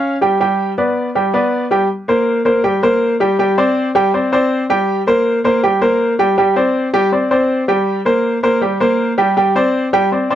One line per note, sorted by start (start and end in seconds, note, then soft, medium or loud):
0.00 0.15 C#4 medium
0.00 0.15 C#5 medium
0.00 0.15 F5 medium
0.21 0.37 G3 medium
0.21 0.37 G4 medium
0.21 0.37 G5 medium
0.40 0.71 G3 medium
0.40 0.71 G4 medium
0.40 0.72 G5 medium
0.78 1.08 B3 medium
0.78 1.09 B4 medium
0.78 1.09 D5 medium
1.15 1.31 G3 medium
1.15 1.31 G4 medium
1.15 1.31 G5 medium
1.34 1.64 B3 medium
1.34 1.65 B4 medium
1.34 1.65 D5 medium
1.71 1.86 G3 medium
1.71 1.87 G4 medium
1.71 1.87 G5 medium
2.08 2.39 A#3 medium
2.08 2.39 A#4 medium
2.08 2.39 C5 medium
2.45 2.61 A#3 medium
2.45 2.61 A#4 medium
2.45 2.61 C5 medium
2.64 2.79 G3 medium
2.64 2.80 G4 medium
2.64 2.80 G5 medium
2.83 3.14 A#3 medium
2.83 3.14 A#4 medium
2.83 3.14 C5 medium
3.20 3.36 G3 medium
3.20 3.36 G4 medium
3.20 3.36 G5 medium
3.39 3.54 G3 medium
3.39 3.55 G4 medium
3.39 3.55 G5 medium
3.58 3.88 C4 medium
3.58 3.89 C5 medium
3.58 3.89 D5 medium
3.95 4.10 G3 loud
3.95 4.11 G4 medium
3.95 4.11 G5 loud
4.14 4.29 C4 medium
4.14 4.29 C5 medium
4.14 4.29 D5 medium
4.32 4.63 C4 medium
4.32 4.63 C5 medium
4.32 4.63 D5 medium
4.70 5.00 G3 medium
4.70 5.01 G4 medium
4.70 5.01 G5 medium
5.07 5.38 A#3 medium
5.07 5.38 A#4 medium
5.07 5.38 C5 medium
5.44 5.60 A#3 medium
5.44 5.60 A#4 medium
5.44 5.60 C5 medium
5.63 5.78 G3 medium
5.63 5.79 G4 medium
5.63 5.79 G5 medium
5.81 6.12 A#3 medium
5.81 6.12 A#4 medium
5.81 6.12 C5 medium
6.19 6.34 G3 medium
6.19 6.35 G4 medium
6.19 6.35 G5 medium
6.38 6.53 G3 medium
6.38 6.53 G4 medium
6.38 6.53 G5 medium
6.56 6.87 C4 medium
6.56 6.87 C5 medium
6.56 6.87 D5 medium
6.93 7.09 G3 medium
6.93 7.09 G4 loud
6.93 7.09 G5 medium
7.12 7.28 C4 medium
7.12 7.28 C5 medium
7.12 7.28 D5 medium
7.31 7.62 C4 medium
7.31 7.62 C5 medium
7.31 7.62 D5 medium
7.68 7.99 G3 medium
7.68 7.99 G4 medium
7.68 7.99 G5 medium
8.05 8.36 A#3 medium
8.05 8.37 A#4 medium
8.05 8.37 C5 medium
8.43 8.59 A#3 medium
8.43 8.59 A#4 medium
8.43 8.59 C5 medium
8.61 8.77 G3 medium
8.61 8.77 G4 medium
8.61 8.77 G5 medium
8.80 9.11 A#3 medium
8.80 9.11 A#4 medium
8.80 9.12 C5 medium
9.18 9.33 G3 loud
9.18 9.33 G4 medium
9.18 9.34 G5 medium
9.37 9.52 G3 medium
9.37 9.52 G4 medium
9.37 9.53 G5 medium
9.55 9.86 C4 medium
9.55 9.86 C5 medium
9.55 9.87 D5 medium
9.93 10.08 G3 loud
9.93 10.09 G4 medium
9.93 10.09 G5 loud
10.12 10.27 C4 medium
10.12 10.27 C5 medium
10.12 10.28 D5 medium
10.30 10.35 C4 medium
10.30 10.35 C5 medium
10.30 10.35 D5 medium